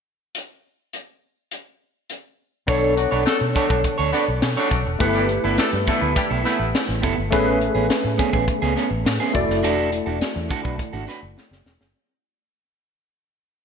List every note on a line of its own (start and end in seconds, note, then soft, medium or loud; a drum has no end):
0.35 closed hi-hat medium
0.93 closed hi-hat soft
1.51 closed hi-hat medium
2.10 closed hi-hat soft
2.67 3.05 B1 medium
2.67 4.96 B3 medium
2.67 2.94 D4 medium
2.67 4.96 D4 medium
2.67 2.95 A4 medium
2.67 4.97 A4 medium
2.67 2.95 C#5 medium
2.67 4.97 C#5 medium
2.67 kick loud
2.67 closed hi-hat medium
2.97 3.09 F#3 medium
2.97 3.09 D4 medium
2.97 3.09 F#4 medium
2.97 muted clean electric guitar stroke soft
2.97 closed hi-hat medium
3.11 3.24 B1 medium
3.11 3.23 B3 medium
3.11 3.23 D4 medium
3.11 3.24 D4 medium
3.11 3.24 F#4 medium
3.11 3.24 A4 medium
3.11 3.23 B4 medium
3.11 3.23 C#5 medium
3.26 3.38 A3 medium
3.26 3.38 D4 medium
3.26 3.37 F#4 medium
3.26 3.38 A4 loud
3.26 muted clean electric guitar stroke soft
3.26 snare loud
3.26 closed hi-hat medium
3.41 3.53 B2 medium
3.41 muted clean electric guitar stroke soft
3.55 3.78 A3 medium
3.55 3.69 D4 medium
3.55 3.79 D4 medium
3.55 3.79 F#4 medium
3.55 3.78 A4 medium
3.55 3.69 A4 medium
3.55 3.68 C#5 medium
3.55 kick medium
3.55 snare soft
3.55 closed hi-hat medium
3.69 3.82 B1 medium
3.69 3.82 D4 soft
3.69 3.82 A4 soft
3.69 3.81 C#5 soft
3.69 kick medium
3.84 muted clean electric guitar stroke soft
3.84 kick medium
3.84 closed hi-hat medium
3.98 4.11 D2 medium
3.98 4.12 D4 medium
3.98 4.13 A4 medium
3.98 4.14 C#5 medium
4.12 4.25 B3 medium
4.12 4.24 D4 medium
4.12 4.25 D4 medium
4.12 4.25 F#4 medium
4.12 4.26 A4 medium
4.12 4.25 B4 medium
4.12 4.26 D5 medium
4.12 snare soft
4.12 closed hi-hat medium
4.28 4.40 B1 medium
4.28 muted clean electric guitar stroke soft
4.42 4.55 B2 medium
4.42 muted clean electric guitar stroke soft
4.42 snare loud
4.42 closed hi-hat medium
4.57 4.80 A3 medium
4.57 4.80 D4 medium
4.57 4.70 D4 medium
4.57 4.80 F#4 medium
4.57 4.80 A4 medium
4.57 4.71 A4 medium
4.57 4.71 C#5 medium
4.71 4.84 B1 medium
4.71 muted clean electric guitar stroke soft
4.71 kick medium
4.71 closed hi-hat medium
4.86 4.98 E1 medium
4.86 muted clean electric guitar stroke soft
4.99 5.37 G1 medium
4.99 7.28 A3 medium
4.99 5.27 B3 medium
4.99 7.28 E4 medium
4.99 5.28 E4 medium
4.99 7.28 G4 medium
4.99 5.28 A4 medium
4.99 7.29 B4 medium
4.99 kick loud
4.99 closed hi-hat loud
5.14 5.26 G3 medium
5.14 5.26 D4 medium
5.14 5.27 E4 medium
5.14 5.26 G4 medium
5.29 muted clean electric guitar stroke soft
5.29 closed hi-hat medium
5.44 5.56 G1 medium
5.44 5.56 B3 medium
5.44 5.57 B3 medium
5.44 5.56 D4 medium
5.44 5.55 E4 medium
5.44 5.56 E4 medium
5.44 5.56 A4 medium
5.44 5.56 B4 medium
5.58 5.70 A3 medium
5.58 5.70 D4 medium
5.58 5.70 E4 medium
5.58 5.70 A4 medium
5.58 muted fingered electric bass stroke soft
5.58 muted clean electric guitar stroke soft
5.58 snare loud
5.58 closed hi-hat medium
5.73 5.85 G2 medium
5.73 muted clean electric guitar stroke soft
5.87 6.11 A3 medium
5.87 6.01 B3 medium
5.87 6.11 D4 medium
5.87 6.11 E4 medium
5.87 6.01 E4 medium
5.87 6.11 A4 medium
5.87 6.01 A4 medium
5.87 kick medium
5.87 closed hi-hat medium
6.01 6.14 D2 medium
6.01 6.14 B3 soft
6.01 6.14 E4 soft
6.01 6.14 B4 medium
6.16 6.28 G3 medium
6.16 6.28 D4 medium
6.16 6.28 E4 medium
6.16 6.28 G4 loud
6.16 muted clean electric guitar stroke soft
6.16 kick medium
6.16 closed hi-hat medium
6.30 6.43 B1 medium
6.30 6.43 B3 medium
6.30 6.44 E4 medium
6.30 6.45 A4 medium
6.44 6.69 E3 medium
6.44 6.69 A3 medium
6.44 6.57 B3 medium
6.44 6.68 B3 medium
6.44 6.57 E4 medium
6.44 6.69 E4 loud
6.44 6.58 B4 medium
6.44 snare soft
6.44 closed hi-hat medium
6.59 6.72 A1 medium
6.59 muted clean electric guitar stroke soft
6.75 snare loud
6.75 closed hi-hat medium
6.88 7.01 A1 medium
6.88 muted clean electric guitar stroke soft
6.88 snare soft
7.02 7.16 F#1 medium
7.02 7.18 B3 medium
7.02 7.17 E4 medium
7.02 7.15 A4 medium
7.02 kick medium
7.02 closed hi-hat medium
7.17 7.32 G1 medium
7.17 muted clean electric guitar stroke soft
7.30 7.69 A1 loud
7.30 9.30 A3 medium
7.30 7.59 B3 medium
7.30 9.30 C#4 medium
7.30 7.59 C#4 medium
7.30 9.31 G#4 medium
7.30 7.59 G#4 medium
7.30 9.31 B4 medium
7.30 kick loud
7.30 closed hi-hat loud
7.60 muted clean electric guitar stroke soft
7.60 closed hi-hat medium
7.75 7.88 A1 medium
7.75 7.88 B3 medium
7.75 7.87 C#4 medium
7.75 7.87 G#4 medium
7.89 muted clean electric guitar stroke soft
7.89 snare loud
7.89 closed hi-hat medium
8.04 8.17 A2 medium
8.04 muted clean electric guitar stroke soft
8.18 8.33 B3 medium
8.18 8.32 C#4 medium
8.18 8.32 G#4 medium
8.18 kick loud
8.18 snare soft
8.18 closed hi-hat medium
8.33 8.46 A1 medium
8.33 8.46 B3 soft
8.33 8.45 C#4 medium
8.33 8.45 G#4 medium
8.33 kick medium
8.47 muted clean electric guitar stroke soft
8.47 kick medium
8.47 closed hi-hat medium
8.62 8.75 C#2 medium
8.62 8.75 B3 medium
8.62 8.75 C#4 medium
8.62 8.76 G#4 medium
8.76 8.88 B3 medium
8.76 8.89 C#4 medium
8.76 8.89 A4 medium
8.76 snare soft
8.76 closed hi-hat medium
8.91 9.03 A1 medium
8.91 muted clean electric guitar stroke soft
9.05 9.18 A2 medium
9.05 muted clean electric guitar stroke soft
9.05 snare loud
9.05 closed hi-hat medium
9.20 9.34 B3 medium
9.20 9.34 C#4 medium
9.20 9.35 G#4 medium
9.33 9.47 E1 medium
9.33 11.61 A3 medium
9.33 11.62 E4 medium
9.33 11.62 F#4 medium
9.33 11.62 D5 medium
9.33 muted clean electric guitar stroke soft
9.33 kick medium
9.33 closed hi-hat medium
9.49 9.63 F#1 medium
9.49 muted clean electric guitar stroke soft
9.49 snare soft
9.63 10.00 E1 loud
9.63 9.90 D4 medium
9.63 9.90 F#4 medium
9.63 9.91 A4 medium
9.63 closed hi-hat loud
9.92 muted clean electric guitar stroke soft
9.92 closed hi-hat medium
10.06 10.19 E1 medium
10.06 10.19 D4 medium
10.06 10.19 F#4 medium
10.06 10.18 A4 medium
10.21 muted clean electric guitar stroke soft
10.21 muted fingered electric bass stroke medium
10.21 snare loud
10.21 closed hi-hat medium
10.35 10.48 E2 medium
10.35 muted clean electric guitar stroke soft
10.49 10.64 D4 medium
10.49 10.63 F#4 medium
10.49 10.63 A4 loud
10.49 kick loud
10.49 closed hi-hat medium
10.63 10.77 B1 loud
10.63 10.77 D4 soft
10.63 10.76 F#4 medium
10.63 10.76 B4 medium
10.63 kick medium
10.78 muted clean electric guitar stroke soft
10.78 kick medium
10.78 closed hi-hat medium
10.93 11.06 G#1 medium
10.93 11.06 D4 medium
10.93 11.07 F#4 medium
10.93 11.08 A4 medium
11.07 11.20 D4 medium
11.07 11.20 F#4 medium
11.07 11.20 B4 medium
11.07 snare soft
11.07 closed hi-hat medium
11.23 11.35 F#1 medium
11.23 muted clean electric guitar stroke soft
11.37 muted clean electric guitar stroke soft
11.37 snare soft
11.51 11.64 F#1 medium
11.51 muted clean electric guitar stroke soft
11.51 snare medium
11.66 11.78 E1 medium
11.66 snare medium
11.81 muted clean electric guitar stroke soft
11.81 snare medium